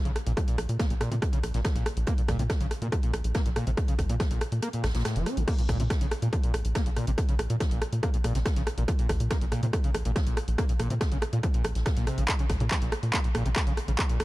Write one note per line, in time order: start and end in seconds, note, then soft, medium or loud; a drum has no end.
0.05 0.14 A#1 medium
0.05 0.11 C#3 loud
0.05 closed hi-hat soft
0.16 cross-stick medium
0.16 closed hi-hat medium
0.16 open hi-hat medium
0.27 0.35 A#1 medium
0.27 0.32 A#2 medium
0.27 closed hi-hat soft
0.37 0.41 F3 medium
0.37 kick loud
0.37 cross-stick medium
0.37 closed hi-hat medium
0.48 0.56 A#2 medium
0.48 closed hi-hat soft
0.58 0.67 A#1 medium
0.58 cross-stick medium
0.58 closed hi-hat medium
0.58 open hi-hat loud
0.69 0.78 A#2 medium
0.69 closed hi-hat medium
0.79 0.85 A#3 loud
0.79 kick loud
0.79 cross-stick medium
0.79 snare loud
0.79 closed hi-hat medium
0.90 0.99 A#1 medium
0.90 0.94 A#2 medium
0.90 closed hi-hat soft
1.01 1.10 A#2 loud
1.01 cross-stick medium
1.01 closed hi-hat medium
1.01 open hi-hat medium
1.12 1.20 A#2 medium
1.12 1.15 C3 loud
1.12 closed hi-hat soft
1.22 kick loud
1.22 cross-stick medium
1.22 closed hi-hat medium
1.33 1.39 C#3 loud
1.33 closed hi-hat soft
1.43 1.52 A#1 loud
1.43 cross-stick medium
1.43 closed hi-hat medium
1.43 open hi-hat loud
1.54 1.63 A#1 medium
1.54 1.60 A#2 medium
1.54 snare medium
1.54 closed hi-hat soft
1.64 1.68 F3 medium
1.64 kick loud
1.64 cross-stick medium
1.64 snare loud
1.64 closed hi-hat medium
1.75 1.84 A#1 medium
1.75 1.84 A#2 medium
1.75 snare soft
1.75 closed hi-hat soft
1.86 cross-stick medium
1.86 closed hi-hat medium
1.86 open hi-hat medium
1.97 2.06 A#1 medium
1.97 closed hi-hat medium
2.07 2.13 A#3 loud
2.07 kick loud
2.07 cross-stick medium
2.07 closed hi-hat medium
2.18 2.21 A#2 medium
2.18 closed hi-hat soft
2.28 2.37 A#1 loud
2.28 2.37 A#2 loud
2.28 kick medium
2.28 cross-stick medium
2.28 snare soft
2.28 closed hi-hat medium
2.28 open hi-hat loud
2.39 2.48 A#2 medium
2.39 2.43 C3 loud
2.39 closed hi-hat medium
2.50 kick loud
2.50 cross-stick medium
2.50 snare loud
2.50 closed hi-hat medium
2.60 2.69 A#1 medium
2.60 2.66 C#3 loud
2.60 closed hi-hat medium
2.71 cross-stick medium
2.71 closed hi-hat medium
2.71 open hi-hat medium
2.82 2.91 A#2 medium
2.82 2.88 A#2 medium
2.82 closed hi-hat medium
2.92 2.96 F3 medium
2.92 kick loud
2.92 cross-stick medium
2.92 closed hi-hat medium
3.03 3.12 A#2 medium
3.03 closed hi-hat medium
3.13 3.23 A#1 loud
3.13 cross-stick medium
3.13 closed hi-hat medium
3.13 open hi-hat loud
3.24 3.33 A#1 medium
3.24 closed hi-hat medium
3.34 3.41 A#3 loud
3.34 kick loud
3.34 cross-stick medium
3.34 snare loud
3.34 closed hi-hat medium
3.46 3.54 A#1 medium
3.46 3.49 A#2 medium
3.46 closed hi-hat medium
3.56 3.65 A#2 loud
3.56 cross-stick medium
3.56 closed hi-hat medium
3.56 open hi-hat medium
3.67 3.76 A#1 medium
3.67 3.70 C3 loud
3.67 closed hi-hat medium
3.77 kick loud
3.77 cross-stick medium
3.77 closed hi-hat medium
3.88 3.94 C#3 loud
3.88 closed hi-hat soft
3.88 closed hi-hat medium
3.98 4.08 A#1 medium
3.98 kick medium
3.98 cross-stick medium
3.98 closed hi-hat medium
3.98 open hi-hat loud
4.09 4.15 A#2 medium
4.09 4.18 A#2 medium
4.09 closed hi-hat medium
4.20 4.24 F3 medium
4.20 kick loud
4.20 cross-stick medium
4.20 snare loud
4.20 closed hi-hat medium
4.31 4.40 A#1 medium
4.31 4.39 A#2 medium
4.31 closed hi-hat medium
4.41 cross-stick medium
4.41 closed hi-hat medium
4.41 open hi-hat medium
4.52 4.61 A#2 medium
4.52 closed hi-hat medium
4.62 4.69 A#3 loud
4.62 cross-stick medium
4.62 closed hi-hat medium
4.73 4.85 A#2 medium
4.73 closed hi-hat medium
4.84 4.93 A#1 loud
4.84 4.87 A#1 medium
4.84 cross-stick medium
4.84 snare medium
4.84 closed hi-hat medium
4.84 open hi-hat loud
4.89 snare medium
4.89 closed hi-hat medium
4.94 5.03 A#1 medium
4.94 5.03 A#2 medium
4.94 snare medium
4.94 closed hi-hat medium
4.99 snare medium
4.99 closed hi-hat medium
5.05 5.18 A2 medium
5.05 cross-stick medium
5.05 snare loud
5.05 closed hi-hat medium
5.16 5.25 F1 medium
5.16 5.28 F3 medium
5.16 snare soft
5.16 closed hi-hat medium
5.26 5.39 C#4 medium
5.26 cross-stick medium
5.26 closed hi-hat medium
5.26 open hi-hat medium
5.37 5.46 A#1 medium
5.37 5.43 C3 loud
5.37 closed hi-hat medium
5.47 5.54 A#3 loud
5.47 kick loud
5.47 cross-stick medium
5.47 closed hi-hat medium
5.47 crash medium
5.58 5.62 A#2 medium
5.58 closed hi-hat medium
5.69 5.78 A#1 medium
5.69 5.78 A#2 loud
5.69 kick medium
5.69 cross-stick medium
5.69 snare soft
5.69 closed hi-hat medium
5.69 open hi-hat loud
5.80 5.88 A#2 medium
5.80 5.83 C3 loud
5.80 closed hi-hat medium
5.90 kick loud
5.90 cross-stick medium
5.90 snare loud
5.90 closed hi-hat medium
6.01 6.10 A#1 medium
6.01 6.07 C#3 loud
6.01 closed hi-hat medium
6.11 cross-stick medium
6.11 closed hi-hat medium
6.11 open hi-hat medium
6.22 6.28 A#2 medium
6.22 6.31 A#2 medium
6.22 closed hi-hat medium
6.33 6.36 F3 medium
6.33 kick loud
6.33 cross-stick medium
6.33 closed hi-hat medium
6.44 6.52 A#2 medium
6.44 closed hi-hat medium
6.54 6.63 A#1 medium
6.54 cross-stick medium
6.54 closed hi-hat medium
6.54 open hi-hat loud
6.65 6.74 A#1 medium
6.65 closed hi-hat medium
6.75 6.81 A#3 loud
6.75 kick loud
6.75 cross-stick medium
6.75 snare loud
6.75 closed hi-hat medium
6.75 closed hi-hat loud
6.86 6.95 A#1 medium
6.86 6.90 A#2 medium
6.86 closed hi-hat medium
6.96 7.06 A#2 loud
6.96 cross-stick medium
6.96 closed hi-hat medium
6.96 open hi-hat medium
7.07 7.16 A#1 medium
7.07 7.11 C3 loud
7.07 closed hi-hat medium
7.18 kick loud
7.18 cross-stick medium
7.18 closed hi-hat loud
7.18 closed hi-hat medium
7.29 7.34 C#3 loud
7.29 closed hi-hat medium
7.29 closed hi-hat soft
7.39 7.48 A#1 loud
7.39 cross-stick medium
7.39 closed hi-hat medium
7.39 open hi-hat loud
7.50 7.59 A#2 medium
7.50 7.56 A#2 medium
7.50 closed hi-hat medium
7.60 7.64 F3 medium
7.60 kick loud
7.60 cross-stick medium
7.60 snare loud
7.60 closed hi-hat medium
7.71 7.80 A#1 medium
7.71 7.80 A#2 medium
7.71 closed hi-hat medium
7.82 cross-stick medium
7.82 closed hi-hat medium
7.82 open hi-hat loud
7.93 8.01 A#2 medium
7.93 closed hi-hat medium
8.03 8.09 A#3 loud
8.03 kick loud
8.03 cross-stick medium
8.03 closed hi-hat medium
8.14 8.17 A#2 medium
8.14 closed hi-hat medium
8.24 8.33 A#1 loud
8.24 8.33 A#2 loud
8.24 cross-stick medium
8.24 closed hi-hat medium
8.24 open hi-hat loud
8.35 8.44 A#1 medium
8.35 8.38 C3 loud
8.35 snare medium
8.35 closed hi-hat medium
8.45 kick loud
8.45 cross-stick medium
8.45 snare loud
8.45 closed hi-hat medium
8.56 8.65 A#1 medium
8.56 8.62 C#3 loud
8.56 snare soft
8.56 closed hi-hat medium
8.67 cross-stick medium
8.67 closed hi-hat medium
8.67 open hi-hat medium
8.78 8.86 A#1 medium
8.78 8.83 A#2 medium
8.78 closed hi-hat medium
8.88 8.92 F3 medium
8.88 kick loud
8.88 cross-stick medium
8.88 closed hi-hat medium
8.99 9.08 A#2 medium
8.99 closed hi-hat medium
9.09 9.18 A#1 loud
9.09 kick medium
9.09 cross-stick medium
9.09 snare soft
9.09 closed hi-hat medium
9.09 open hi-hat loud
9.20 9.29 A#2 medium
9.20 closed hi-hat medium
9.30 9.37 A#3 loud
9.30 kick loud
9.30 cross-stick medium
9.30 snare loud
9.30 closed hi-hat medium
9.41 9.50 A#1 medium
9.41 9.45 A#2 medium
9.41 closed hi-hat medium
9.52 9.61 A#2 loud
9.52 cross-stick medium
9.52 closed hi-hat medium
9.52 open hi-hat loud
9.63 9.71 A#2 medium
9.63 9.66 C3 loud
9.63 closed hi-hat medium
9.73 kick loud
9.73 cross-stick loud
9.73 closed hi-hat medium
9.84 9.90 C#3 loud
9.84 closed hi-hat medium
9.94 10.03 A#1 medium
9.94 cross-stick loud
9.94 closed hi-hat medium
9.94 open hi-hat loud
10.05 10.14 A#1 medium
10.05 10.11 A#2 medium
10.05 closed hi-hat medium
10.16 10.19 F3 medium
10.16 kick loud
10.16 cross-stick medium
10.16 snare loud
10.16 closed hi-hat medium
10.27 10.35 A#1 medium
10.27 10.35 A#2 medium
10.27 closed hi-hat medium
10.37 cross-stick medium
10.37 closed hi-hat medium
10.37 open hi-hat loud
10.48 10.57 A#1 medium
10.48 closed hi-hat medium
10.58 10.64 A#3 loud
10.58 kick loud
10.58 cross-stick loud
10.58 closed hi-hat medium
10.69 10.73 A#2 medium
10.69 closed hi-hat soft
10.79 10.89 A#1 loud
10.79 10.89 A#2 loud
10.79 cross-stick medium
10.79 closed hi-hat medium
10.79 open hi-hat loud
10.90 10.99 A#2 medium
10.90 10.94 C3 loud
10.90 closed hi-hat medium
11.01 kick loud
11.01 cross-stick medium
11.01 snare loud
11.01 closed hi-hat medium
11.12 11.20 A#1 medium
11.12 11.17 C#3 loud
11.12 closed hi-hat medium
11.22 cross-stick loud
11.22 closed hi-hat medium
11.22 open hi-hat loud
11.33 11.39 A#2 medium
11.33 11.42 A#2 medium
11.33 closed hi-hat soft
11.43 11.47 F3 medium
11.43 kick loud
11.43 cross-stick medium
11.43 closed hi-hat medium
11.54 11.63 A#2 medium
11.54 closed hi-hat medium
11.64 11.74 A#1 loud
11.64 cross-stick loud
11.64 closed hi-hat medium
11.64 open hi-hat loud
11.75 11.84 A#1 medium
11.75 snare medium
11.75 closed hi-hat medium
11.86 11.90 A#2 medium
11.86 kick loud
11.86 cross-stick medium
11.86 snare loud
11.86 closed hi-hat medium
11.86 closed hi-hat loud
11.97 12.05 A#1 medium
11.97 12.05 A#2 loud
11.97 snare soft
11.97 closed hi-hat medium
12.07 12.19 C3 medium
12.07 cross-stick medium
12.07 closed hi-hat medium
12.07 open hi-hat loud
12.18 12.27 A#1 medium
12.18 12.24 C#3 loud
12.18 closed hi-hat medium
12.28 kick loud
12.28 cross-stick loud
12.28 clap loud
12.28 closed hi-hat medium
12.39 12.45 C#3 loud
12.39 closed hi-hat soft
12.50 12.59 A#1 medium
12.50 kick medium
12.50 cross-stick medium
12.50 snare soft
12.50 closed hi-hat medium
12.50 open hi-hat loud
12.60 12.69 A#2 medium
12.60 12.64 C#3 medium
12.60 closed hi-hat medium
12.70 12.75 F3 medium
12.70 kick loud
12.70 cross-stick medium
12.70 snare loud
12.70 clap loud
12.70 closed hi-hat medium
12.82 12.91 A#1 medium
12.82 12.91 A#2 medium
12.82 closed hi-hat soft
12.92 cross-stick loud
12.92 closed hi-hat medium
12.92 open hi-hat medium
13.03 13.12 A#2 medium
13.03 closed hi-hat soft
13.13 13.20 A#3 loud
13.13 kick loud
13.13 cross-stick medium
13.13 clap loud
13.13 closed hi-hat medium
13.24 13.28 A#2 medium
13.24 closed hi-hat medium
13.34 13.44 A#1 loud
13.34 13.44 A#2 loud
13.34 cross-stick loud
13.34 closed hi-hat medium
13.34 open hi-hat loud
13.46 13.54 A#1 medium
13.46 13.49 C3 loud
13.46 closed hi-hat medium
13.56 kick loud
13.56 cross-stick loud
13.56 snare loud
13.56 clap loud
13.56 closed hi-hat medium
13.67 13.76 A#1 medium
13.67 13.73 C#3 loud
13.67 closed hi-hat soft
13.77 cross-stick medium
13.77 closed hi-hat medium
13.77 open hi-hat medium
13.88 13.97 A#1 medium
13.88 13.92 C#3 medium
13.88 closed hi-hat soft
13.98 14.02 F3 medium
13.98 kick loud
13.98 cross-stick medium
13.98 clap loud
13.98 closed hi-hat medium
14.09 14.18 A#2 medium
14.09 closed hi-hat soft
14.20 14.24 A#1 loud
14.20 cross-stick loud
14.20 closed hi-hat medium
14.20 open hi-hat loud